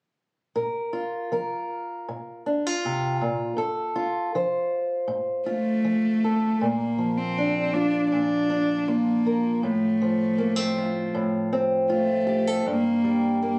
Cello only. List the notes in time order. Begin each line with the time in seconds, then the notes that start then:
5.49 A3
6.64 A#3
7.17 C4
7.74 D4
8.11 D4
8.88 A#3
9.64 A3
11.92 A3
12.69 A#3
13.46 A#3